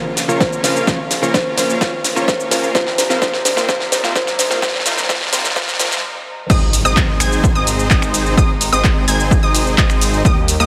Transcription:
Already playing: A#1 C#3 F3 A#3 F4, riser
0.17 snare, open hi-hat, shaker
0.28 A#1 C#3 F3 A#3 C#4 F4 A#4 C#5, shaker
0.40 C5, kick, snare, shaker
0.53 shaker
0.63 A#1 C#3 F3 A#3 C#4 F4 A#4 C5 F5, snare, open hi-hat, shaker
0.76 shaker
0.87 A#1 C#3 F3 A#3 C#4 F4 A#4 C#5, kick, snare, shaker
1.11 snare, open hi-hat, shaker
1.22 A#1 C#3 F3 A#3 C#4 F4 A#4 C#5, shaker
1.34 C5, kick, snare, shaker
1.57 A#1 C#3 F3 A#3 C#4 F4 A#4 C5 F5, snare, open hi-hat, shaker
1.70 shaker
1.81 A#1 C#3 F3 A#3 C#4 F4 A#4 C#5, kick, snare, shaker
2.04 snare, open hi-hat, shaker
2.16 A#1 C#3 F3 A#3 C#4 F4 A#4 C#5, shaker
2.28 C5, kick, snare, shaker
2.40 shaker
2.51 A#1 C#3 F3 A#3 C#4 F4 A#4 C5 F5, snare, open hi-hat, shaker
2.64 shaker
2.74 C2 C3 D#3 F3 G3 A#3 C4 D#4 F4 A#4 C5, kick, snare, shaker
2.87 snare
2.98 C5, snare, open hi-hat, shaker
3.09 C2 C3 F3 A#3 C4 F4 A#4 C5, snare, shaker
3.21 C2 C3 F3 A#3 C4 F4 A#4 C5, kick, snare, shaker
3.33 snare
3.45 C5, snare, open hi-hat, shaker
3.56 C2 C3 F3 A#3 C4 F4 A#4 C5, snare, shaker
3.68 C2 C3 F3 A#3 C4 F4 C5, kick, snare, shaker
3.80 snare
3.92 C5, snare, open hi-hat, shaker
4.03 C2 C3 F3 A#3 C4 F4 A#4 C5, snare, shaker
4.15 C2 C3 F3 A#3 C4 F4 A#4 C5, kick, snare, shaker
4.27 snare, shaker
4.39 C5, snare, open hi-hat, shaker
4.50 C2 C3 F3 A#3 C4 F4 A#4 C5, snare, shaker
4.62 C2 C3 F3 A#3 C4 F4 C5, kick, snare, shaker
4.68 snare
4.74 snare
4.80 snare
4.85 C2 C3 F3 A#3 C4 F4 A#4 C5, snare, open hi-hat, shaker
4.92 snare
4.97 snare, shaker
5.03 snare
5.09 C2 C3 F3 A#3 C4 F4 A#4 C5, kick, snare, shaker
5.15 snare
5.21 snare
5.27 snare
5.32 C2 C3 F3 A#3 C4 F4 A#4 C5, snare, open hi-hat, shaker
5.38 snare
5.44 snare, shaker
5.50 snare
5.55 C2 C3 F3 A#3 C4 F4 A#4 C5, kick, snare, shaker
5.62 snare
5.68 snare, shaker
5.74 snare
5.79 C2 C3 F3 A#3 C4 F4 A#4 C5, snare, open hi-hat, shaker
5.85 snare
5.91 snare, shaker
5.97 snare
6.50 G#1 C3 D#3 G#3 C4 D#4 G#4 C5 D#5 D#6, kick, crash, impact, shaker
6.73 open hi-hat, shaker
6.85 G#1 C4 D#4 G#4 C5 D#5 D#6, shaker
6.97 kick, clap, shaker
7.20 G#1 C4 D#4 G#4 C5 G#5 G#6, finger snap, open hi-hat, shaker
7.32 shaker
7.44 kick, shaker
7.55 G#1 C4 D#4 G#4 C5 D#5 D#6
7.67 open hi-hat, shaker
7.79 shaker
7.90 G#1 C4 D#4 G#4 C5 D#5 D#6, kick, clap, shaker
8.02 finger snap, shaker
8.14 open hi-hat, shaker
8.26 shaker
8.37 G#1 C4 D#4 G#4 C5 D#6, kick, shaker
8.61 open hi-hat, shaker
8.72 G#1 C4 D#4 G#4 C5 D#5 D#6, shaker
8.84 kick, clap, shaker
9.08 G#1 C4 D#4 G#4 C5 G#5 G#6, open hi-hat, shaker
9.20 shaker
9.31 kick, shaker
9.43 G#1 C4 D#4 G#4 C5 D#5 D#6
9.55 open hi-hat, shaker
9.67 shaker
9.78 G#1 D#6, kick, clap, shaker
9.90 finger snap, shaker
10.01 open hi-hat, shaker
10.14 shaker
10.25 D#2 G3 A#3 G4 D#6, kick, shaker
10.48 open hi-hat, shaker
10.60 D#2 A#3 D#4 G4 A#4 D#5 D#6, shaker

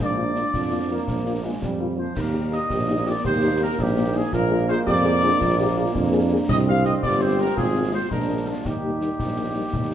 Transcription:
0.00 A#1 F3 A#3 D4 D5, concert bass drum, snare
0.18 A#3 F4
0.36 A#3 F4, snare
0.54 F2 F3, concert bass drum, snare
0.73 A#3 F4
0.91 A#3 F4
1.08 A#1, concert bass drum, snare
1.26 A#3 F4
1.44 G#3 A#3 F4
1.62 F2 G3, concert bass drum, snare
1.81 A#3 F4
1.98 F3 A#3 F4 C5
2.15 D#2 G3 A#3 D#4 A#4, concert bass drum, snare, crash
2.34 A#3 D#4 G4
2.52 A#3 D#4 G4 D#5, snare
2.70 A#1 G4, concert bass drum, snare
2.88 A#3 D#4 G4
3.06 A#3 D#4 F4 G4 D5
3.24 D#2 G4 C5, concert bass drum, snare
3.43 A#3 D#4 G4
3.60 A#3 D#4 G4 A#4
3.78 A#1 D#4 G4, concert bass drum, snare
3.97 A#3 D#4 G4
4.15 A#3 D#4 G4 G#4
4.32 A#1 G#3 A#3 F4 A#4, concert bass drum, snare
4.51 A#3 F4 G#4
4.69 A#3 F4 G#4 C5, snare
4.86 F2 G4 D5, concert bass drum, snare
5.05 A#3 F4 G#4
5.23 A#3 D4 F4 G#4
5.40 A#1 F4, concert bass drum, snare
5.59 A#3 F4 G4 G#4
5.77 A#3 F4 G#4
5.95 F2 D4, concert bass drum, snare
6.13 A#3 F4 G#4
6.31 A#3 F4 G#4
6.49 C2 G3 C4 D#5, concert bass drum, snare, crash
6.67 G3 C4 G4 F5
6.84 G3 C4 G4 D#5, snare
7.03 G1 G4 D5, concert bass drum, snare
7.20 G3 C4 G4 C5
7.39 G3 C4 G4 A#4
7.57 G#1 F3 F4 G#4, concert bass drum, snare
7.74 G#3 C4 F4
7.92 G#3 C4 F4 C5
8.10 A#1 G#3 D4 A#4, concert bass drum, snare
8.29 G#3 A#3 D4
8.46 G#3 A#3 D4 F4
8.65 D#2 G3 D#4 G4, concert bass drum, snare
8.84 G3 A#3 D#4
9.01 G3 A#3 D#4, snare
9.19 A#1, concert bass drum, snare
9.37 G3 A#3 D#4
9.55 G3 A#3 D#4
9.73 D#2, concert bass drum, snare
9.91 G3 A#3 D#4

